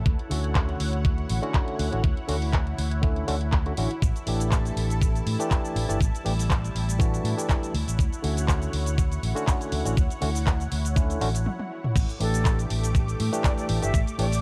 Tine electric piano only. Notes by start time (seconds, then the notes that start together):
0.29 D3 A3 C#4 F#4
1.42 D3 A3 C#4 F#4
1.92 D3 A3 C#4 F#4
2.28 D3 A3 C#4 F#4
3.02 D3 A3 C#4 E4
3.27 D3 A3 C#4 F#4
3.66 D3 A3 C#4 F#4
3.77 D3 A3 C#4 F#4
4.26 E3 A3 D4 G4
5.39 E3 A3 D4 G4
5.88 E3 A3 D4 G4
6.25 E3 A3 D4 G4
6.99 E3 A3 D4 F#4
7.37 E3 A3 D4 G4
8.22 D3 A3 C#4 F#4
9.35 D3 A3 C#4 F#4
9.85 D3 A3 C#4 F#4
10.21 D3 A3 C#4 F#4
10.96 D3 A3 C#4 E4
11.21 D3 A3 C#4 F#4
12.19 E3 A3 D4 G4
13.32 E3 A3 D4 G4
13.82 E3 A3 D4 G4
14.18 E3 A3 D4 G4